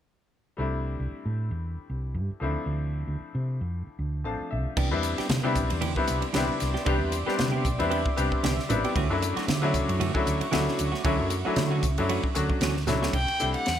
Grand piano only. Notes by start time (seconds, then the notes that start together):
0.57 G3 A3 C4 D4 E4
2.40 F3 A3 C4 D4 E4
4.24 F3 A3 C4 D4 F4 A5
4.51 E5
4.91 G3 B3 C4 D4 E4
5.43 G3 B3 C4 D4 E4
5.96 G3 B3 C4 D4 E4
6.35 G3 B3 C4 D4 E4
6.86 G3 B3 C4 D4 G4
7.26 G3 B3 C4 D4 G4
7.79 G3 B3 C4 D4 E4
8.16 G3 B3 C4 D4 G4
8.69 G3 B3 C4 D4 E4
9.10 F#3 A3 C#4 D4 E4
9.62 F#3 A3 C#4 D4 E4
10.14 F#3 A3 C#4 D4 E4
10.52 F#3 A3 C#4 D4 E4
11.05 F#3 A3 C#4 D4 E4
11.46 F#3 A3 C#4 D4 E4
11.98 F#3 A3 C#4 D4 E4
12.35 F#3 A3 C#4 D4 F#4
12.87 F#3 A3 C#4 D4 E4
13.39 G3 A3 C4 D4 E4